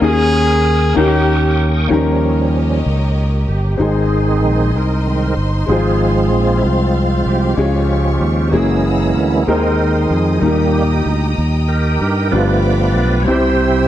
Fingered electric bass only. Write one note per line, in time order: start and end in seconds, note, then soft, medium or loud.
0.02 0.92 D#2 loud
0.97 1.87 D#2 medium
1.91 2.81 D#2 medium
2.86 3.45 C#2 medium
3.49 3.77 G1 medium
3.80 4.43 G#1 medium
4.43 4.72 A#1 medium
4.74 5.33 C2 medium
5.37 5.66 G1 medium
5.68 6.32 G#1 medium
6.32 6.61 A#1 medium
6.64 7.23 C2 medium
7.26 7.55 C2 medium
7.58 8.17 C#2 medium
8.21 8.54 D#2 medium
8.53 9.12 F#1 medium
9.16 9.45 D2 medium
9.48 10.07 D#2 medium
10.10 10.40 F2 medium
10.42 11.02 D#2 medium
11.06 11.35 D2 medium
11.38 11.97 D#2 medium
12.01 12.30 G2 medium
12.33 12.96 G1 medium
12.96 13.25 B1 medium
13.28 13.87 C2 medium